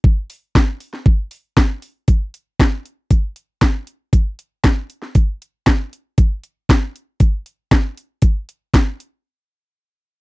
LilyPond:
\new DrumStaff \with { instrumentName = "Drums" } \drummode { \time 4/4 \tempo 4 = 117 bd8 hho8 <bd sn>8 hho16 sn16 bd8 hho8 <bd sn>8 hho8 | <hh bd>8 hh8 <hh bd sn>8 hh8 <hh bd>8 hh8 <hh bd sn>8 hh8 | <hh bd>8 hh8 <hh bd sn>8 hh16 sn16 <hh bd>8 hh8 <hh bd sn>8 hh8 | <hh bd>8 hh8 <hh bd sn>8 hh8 <hh bd>8 hh8 <hh bd sn>8 hh8 |
<hh bd>8 hh8 <hh bd sn>8 hh8 r4 r4 | }